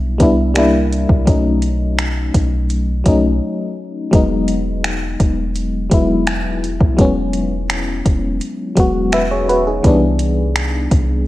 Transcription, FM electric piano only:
0.00 0.18 G3 medium
0.00 0.20 B3 medium
0.00 0.21 D4 medium
0.00 0.22 E4 medium
0.18 0.53 G3 medium
0.18 0.56 B3 medium
0.18 0.56 D4 medium
0.22 0.57 E4 medium
0.54 1.12 G3 medium
0.54 1.13 A#3 medium
0.54 1.13 D4 medium
0.58 1.14 E4 medium
1.26 2.29 F#3 medium
1.26 2.29 A3 medium
1.26 2.30 C#4 medium
1.30 2.31 D#4 medium
3.04 3.82 F#3 medium
3.04 3.82 A3 medium
3.04 3.83 C#4 medium
3.08 3.84 D#4 medium
4.11 5.14 F#3 medium
4.11 5.15 G#3 medium
4.11 5.16 B3 medium
4.15 5.16 D#4 medium
5.90 6.67 F#3 medium
5.90 6.68 G#3 medium
5.90 6.69 B3 medium
5.94 6.69 E4 medium
6.97 8.00 F#3 medium
6.97 8.01 G#3 medium
6.97 8.01 B3 medium
7.01 8.02 C#4 medium
8.75 9.53 F#3 medium
8.75 9.54 G#3 medium
8.75 9.54 B3 medium
8.80 9.14 F#4 medium
9.13 9.30 B4 medium
9.13 9.30 E5 medium
9.31 9.48 G#4 medium
9.31 9.48 C#5 medium
9.49 9.66 F#4 medium
9.49 9.66 B4 medium
9.67 10.01 D#4 medium
9.67 10.01 G#4 medium
9.83 10.86 E3 medium
9.83 10.87 G3 medium
9.83 10.87 B3 medium
9.87 10.88 D4 medium

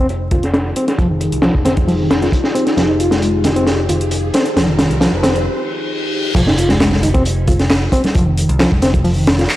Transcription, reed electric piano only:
0.32 0.43 F4 medium
0.76 0.84 C4 medium
0.98 1.07 F3 medium
1.10 1.42 D#3 medium
1.43 1.54 F3 loud
1.65 1.74 C4 loud
1.88 1.96 F3 medium
2.00 2.21 D#3 medium
2.22 2.27 F4 medium
2.55 2.63 C4 loud
2.77 2.82 F3 loud
2.88 2.99 D#4 medium
3.00 3.11 F4 medium
3.11 3.43 G#3 medium
3.44 3.50 D#4 medium
3.56 3.64 C4 loud
3.89 4.01 F4 medium
4.34 4.42 C4 loud
4.56 4.65 F3 medium
4.68 5.00 D#3 medium
5.00 5.12 F3 loud
5.23 5.32 C4 loud
6.36 6.41 F3 loud
6.47 6.57 D#4 medium
6.58 6.69 F4 medium
6.70 7.02 G#3 medium
7.03 7.08 D#4 medium
7.14 7.22 C4 loud
7.48 7.59 F4 medium
7.92 8.01 C4 loud
8.15 8.23 F3 medium
8.27 8.59 D#3 medium
8.59 8.71 F3 loud
8.82 8.90 C4 loud
9.05 9.13 F3 medium
9.16 9.37 D#3 medium
9.38 9.43 F4 medium

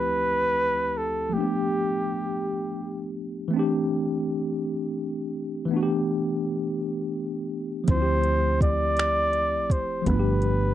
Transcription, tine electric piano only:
0.00 1.27 D2 soft
0.00 1.29 F3 soft
0.00 1.29 A3 soft
0.00 1.31 C4 soft
0.00 1.32 E4 soft
0.00 1.33 G4 medium
1.30 3.46 F3 soft
1.30 3.47 A3 soft
1.35 1.41 A#3 soft
1.35 3.50 D4 soft
1.41 3.52 B3 soft
1.41 3.51 G4 medium
3.48 5.64 E3 medium
3.48 5.65 A3 medium
3.54 5.67 C4 medium
3.54 5.68 D4 medium
3.59 5.70 G4 medium
5.65 7.82 E3 medium
5.65 7.83 A3 medium
5.71 7.85 B3 medium
5.71 7.86 D4 medium
5.76 5.80 F#4 medium
5.83 7.90 G4 medium
7.84 10.00 F3 medium
7.84 10.02 A3 soft
7.89 10.03 C4 soft
7.89 10.04 E4 soft
7.95 7.98 F4 soft
8.02 10.09 G4 medium
10.02 10.74 F3 medium
10.02 10.74 A3 soft
10.07 10.74 B3 soft
10.07 10.74 D4 soft
10.13 10.16 F4 soft
10.19 10.74 G4 medium

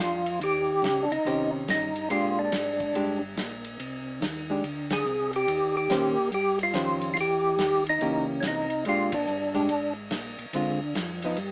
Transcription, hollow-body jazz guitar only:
0.00 0.22 D4 soft
0.00 0.22 G4 medium
1.26 1.90 D#3 soft
1.26 1.90 C#4 soft
1.26 1.91 G4 soft
1.26 1.91 C5 soft
2.10 2.74 G#3 soft
2.10 2.75 D4 soft
2.10 2.75 G4 soft
2.95 3.20 G#3 soft
2.95 3.20 D4 medium
2.95 3.20 G4 medium
4.50 4.63 G#3 soft
4.50 4.63 D4 soft
4.50 4.63 G4 soft
5.90 6.15 D#3 medium
5.90 6.15 C#4 medium
5.90 6.15 G4 medium
5.90 6.16 C5 medium
6.74 7.16 D#3 soft
6.74 7.17 C#4 soft
6.74 7.17 G4 soft
6.74 7.17 C5 medium
8.01 8.65 E3 medium
8.01 8.65 A#3 medium
8.01 8.66 C#4 soft
8.01 8.66 G4 medium
8.86 9.10 G#3 medium
8.86 9.11 D4 soft
8.86 9.11 G4 medium
9.54 9.68 G#3 medium
9.54 9.68 D4 medium
9.54 9.68 G4 medium
10.54 10.78 D3 medium
10.54 10.79 G#3 soft
10.54 10.79 C4 medium
10.54 10.79 F4 medium
11.24 11.37 F3 soft
11.24 11.37 B3 medium
11.24 11.37 D#4 medium

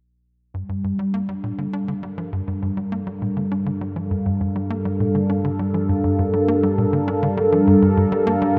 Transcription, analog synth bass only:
0.54 0.63 G2 medium
0.69 0.83 G2 medium
0.84 0.93 G2 medium
0.99 1.13 G3 medium
1.14 1.23 A#3 medium
1.29 1.34 G3 medium
1.44 1.53 A#2 medium
1.58 1.67 D3 medium
1.73 1.87 D4 medium
1.88 1.94 D3 medium
2.03 2.12 G3 medium
2.18 2.31 F3 medium
2.33 2.42 G2 medium
2.48 2.61 G2 medium
2.62 2.71 G2 medium
2.77 2.91 G3 medium
2.92 3.01 A#3 medium
3.07 3.12 G3 medium
3.22 3.31 A#2 medium
3.37 3.46 D3 medium
3.52 3.65 D4 medium
3.66 3.72 D3 medium
3.81 3.90 G3 medium
3.96 4.10 F3 medium
4.11 4.20 G2 medium
4.26 4.39 G2 medium
4.41 4.50 G2 medium
4.56 4.69 G3 medium
4.70 4.79 A#3 loud
4.85 4.91 G3 medium
5.00 5.09 A#2 medium
5.15 5.24 D3 medium
5.30 5.43 D4 medium
5.45 5.50 D3 loud
5.59 5.68 G3 medium
5.74 5.88 F3 medium
5.89 5.98 G2 medium
6.04 6.17 G2 medium
6.19 6.28 G2 medium
6.34 6.47 G3 medium
6.48 6.57 A#3 medium
6.63 6.69 G3 medium
6.78 6.87 A#2 medium
6.93 7.02 D3 medium
7.08 7.21 D4 medium
7.23 7.28 D3 medium
7.37 7.47 G3 medium
7.52 7.66 F3 medium
7.67 7.76 G2 medium
7.82 7.96 G2 medium
7.97 8.06 G2 medium
8.12 8.25 G3 medium
8.27 8.36 A#3 medium
8.42 8.47 G3 medium

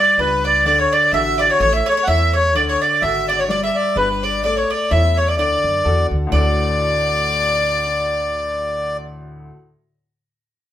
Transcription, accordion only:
0.00 0.20 D5 loud
0.20 0.46 B4 loud
0.46 0.66 D5 loud
0.67 0.79 D5 loud
0.80 0.93 C#5 loud
0.93 1.12 D5 loud
1.14 1.40 E5 loud
1.41 1.51 D5 loud
1.51 1.60 C#5 loud
1.61 1.73 C#5 loud
1.76 1.88 E5 medium
1.88 2.04 C#5 loud
2.03 2.08 F#5 medium
2.10 2.35 E5 loud
2.36 2.54 C#5 loud
2.56 2.62 D5 loud
2.69 2.80 C#5 medium
2.81 3.03 D5 medium
3.02 3.26 E5 loud
3.28 3.39 D5 loud
3.39 3.44 C#5 medium
3.49 3.61 D5 loud
3.63 3.76 E5 medium
3.75 3.97 D5 loud
3.97 4.09 B4 loud
4.23 4.43 D5 medium
4.45 4.56 D5 loud
4.57 4.70 C#5 medium
4.70 4.92 D5 loud
4.91 5.18 E5 loud
5.17 5.28 C#5 loud
5.28 5.35 D5 medium
5.37 6.07 D5 loud
6.33 8.97 D5 loud

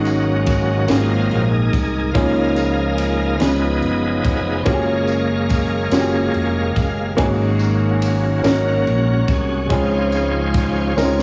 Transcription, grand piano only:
0.00 0.86 G#2 medium
0.00 0.43 G#3 medium
0.00 0.43 C#4 medium
0.00 0.43 D#4 medium
0.00 0.44 F#4 medium
0.00 0.44 G#4 medium
0.88 2.11 G#2 medium
0.88 1.68 A#3 medium
0.88 1.68 C4 medium
0.88 1.69 F4 medium
0.88 1.69 F#4 medium
0.88 1.69 G#4 medium
2.15 3.37 C#3 medium
2.15 2.94 A#3 medium
2.15 2.94 C#4 medium
2.15 2.94 D#4 medium
2.15 2.95 F4 medium
2.15 2.95 G#4 medium
3.39 4.62 C#3 medium
3.39 4.19 G#3 medium
3.39 4.20 B3 medium
3.39 4.20 C#4 medium
3.39 4.20 F4 medium
3.39 4.20 G#4 medium
4.65 5.45 A#3 medium
4.65 5.45 C#4 medium
4.65 5.46 F4 medium
4.65 5.46 F#4 medium
4.65 4.73 G4 medium
4.73 5.49 G#4 medium
5.92 6.71 A#3 medium
5.92 6.72 C#4 medium
5.92 6.72 F4 medium
5.92 6.72 F#4 medium
5.92 5.99 G4 medium
6.00 6.76 G#4 medium
7.17 8.39 G#2 medium
7.17 7.97 A#3 loud
7.17 7.97 C#4 medium
7.17 7.97 D#4 medium
7.17 7.97 F#4 medium
7.17 7.97 G#4 loud
8.43 9.23 A#3 medium
8.43 9.23 C#4 medium
8.43 9.24 D#4 medium
8.43 9.24 F#4 medium
8.43 9.24 A#4 medium
9.69 10.92 C#3 medium
9.69 10.49 G#3 medium
9.69 10.49 C4 medium
9.69 10.50 C#4 medium
9.69 10.50 F4 medium
9.69 10.50 G#4 loud
10.96 11.23 G#3 medium
10.96 11.23 C4 medium
10.96 11.23 C#4 medium
10.96 11.03 D#4 medium
10.96 11.23 A#4 medium
11.04 11.23 F4 medium

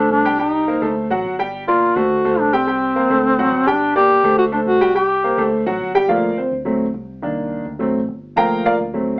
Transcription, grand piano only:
0.00 0.20 A3 medium
0.00 0.20 A4 medium
0.00 0.20 C5 medium
0.25 0.36 G3 medium
0.25 0.37 G4 medium
0.25 0.37 G5 medium
0.39 0.62 G3 medium
0.39 0.63 G4 medium
0.39 0.63 G5 medium
0.68 0.79 A#3 medium
0.68 0.79 A#4 medium
0.68 0.80 C5 medium
0.82 1.05 A3 medium
0.82 1.05 A4 medium
0.82 1.05 C5 medium
1.10 1.34 F#3 medium
1.10 1.34 F#4 medium
1.10 1.34 F#5 medium
1.39 1.62 G3 medium
1.39 1.62 G4 medium
1.39 1.63 G5 medium
1.68 1.91 A#3 medium
1.68 1.91 A#4 medium
1.68 1.91 D5 medium
1.96 2.19 A3 medium
1.96 2.19 A4 medium
1.96 2.20 C5 medium
2.25 2.48 A3 medium
2.25 2.48 A4 medium
2.25 2.48 C5 medium
2.53 2.64 G3 medium
2.53 2.65 G4 medium
2.53 2.65 G5 medium
2.67 2.90 G3 medium
2.67 2.91 G4 medium
2.67 2.91 G5 medium
2.96 3.07 A#3 medium
2.96 3.07 A#4 medium
2.96 3.07 C5 medium
3.10 3.33 A3 medium
3.10 3.34 A4 medium
3.10 3.34 C5 medium
3.39 3.62 F#3 medium
3.39 3.62 F#4 medium
3.39 3.62 F#5 medium
3.67 3.90 G3 medium
3.67 3.90 G4 medium
3.67 3.90 G5 medium
3.95 4.19 A#3 medium
3.95 4.19 A#4 medium
3.95 4.19 D5 medium
4.24 4.47 A3 medium
4.24 4.47 A4 medium
4.24 4.47 C5 medium
4.52 4.75 A3 medium
4.52 4.75 A4 medium
4.52 4.76 C5 medium
4.81 4.92 G3 medium
4.81 4.92 G4 medium
4.81 4.93 G5 medium
4.95 5.18 G3 medium
4.95 5.18 G4 medium
4.95 5.19 G5 medium
5.24 5.35 A#3 medium
5.24 5.35 A#4 medium
5.24 5.35 C5 medium
5.38 5.61 A3 medium
5.38 5.61 A4 medium
5.38 5.61 C5 medium
5.66 5.89 F#3 medium
5.66 5.90 F#4 medium
5.66 5.90 F#5 medium
5.95 6.06 G3 medium
5.95 6.06 G4 medium
5.95 6.06 G5 medium
6.08 6.27 F3 medium
6.08 6.28 A3 soft
6.08 6.28 A#3 medium
6.08 6.35 F4 medium
6.08 6.35 A#4 medium
6.08 6.35 D5 medium
6.08 6.35 F5 medium
6.38 6.51 C4 soft
6.38 6.51 C5 medium
6.65 6.84 F#3 medium
6.65 6.85 A3 medium
6.65 6.85 C4 medium
7.22 7.63 D#3 medium
7.22 7.63 A#3 soft
7.22 7.63 D4 medium
7.79 7.98 F#3 medium
7.79 7.99 A3 medium
7.79 7.99 C4 medium
8.36 8.77 F3 medium
8.36 8.77 A3 soft
8.36 8.78 A#3 medium
8.36 8.63 A#4 medium
8.36 8.63 F5 medium
8.36 8.63 G5 medium
8.36 8.63 A#5 medium
8.65 8.74 F4 medium
8.65 8.74 A#4 medium
8.65 8.74 D5 medium
8.65 8.74 F5 medium
8.94 9.20 F#3 medium
8.94 9.20 A3 medium
8.94 9.20 C4 medium

